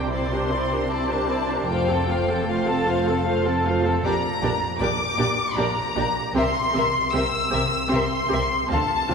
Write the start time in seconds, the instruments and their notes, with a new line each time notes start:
Already playing: double bass section C2, cello section C3, viola section D4 G4, violin section A#4 C5
0.11 viola section C4 E4, violin section C5 D5 C6
0.31 viola section D4 G4, violin section A#4 C5
0.50 viola section C4 E4, violin section C5 D5
0.70 viola section D4 G4, violin section A#4 C5
0.88 viola section C4 E4, violin section C5 D5 A5
1.09 viola section D4 G4, violin section A#4 C5
1.28 viola section C4 E4, violin section C5 D5
1.47 viola section D4 G4
1.52 violin section A#4 C5
1.68 double bass section F1, cello section F2, viola section A3 F4, violin section C5 F5 G5
1.88 viola section C4 A4, violin section A4 A5
2.07 viola section A3 F4, violin section C5 F5
2.28 viola section C4 A4, violin section A4 A5
2.47 viola section A3 F4, violin section C5 F5
2.66 viola section C4 A4, violin section A4 A5
2.86 viola section A3 F4, violin section C5 F5
3.06 viola section C4 A4, violin section A4 A5
3.26 viola section A3 F4, violin section C5 F5
3.45 viola section C4 A4, violin section A4 A5
3.64 viola section A3 F4, violin section C5 F5
3.84 viola section C4 A4, violin section A4 A5
4.02 double bass section A#1, cello section A#2, viola section D4 G4, violin section A#4 D5 A#5
4.41 double bass section A#1, cello section A#2, viola section D4 G4, violin section A#4 D5
4.78 double bass section A#1, cello section A#2, viola section D4 G4, violin section A#4 D5 D6
5.17 double bass section A#1, cello section A#2, viola section D4 G4, violin section A#4 D5
5.55 double bass section A#1, cello section A#2, viola section D4 G4, violin section A#4 D5 A#5
5.95 double bass section A#1, cello section A#2, viola section D4 G4, violin section A#4 D5
6.34 double bass section C2, cello section C3, viola section C4 G4, violin section A#4 E5 C6
6.73 double bass section C2, cello section C3, viola section C4 G4, violin section A#4 E5
7.12 double bass section C2, cello section C3, viola section C4 G4, violin section A#4 E5 E6
7.50 double bass section C2, cello section C3, viola section C4 G4, violin section A#4 E5
7.89 double bass section C2, cello section C3, viola section C4 G4, violin section C6
7.93 violin section A#4 E5
8.28 double bass section C2, viola section C4 G4
8.32 cello section C3, violin section A#4 E5
8.68 double bass section D2, cello section D3, viola section C4 F4, violin section A5
8.72 violin section A4 F5
9.07 double bass section D2, cello section D3, viola section C4 F4, violin section A4 F5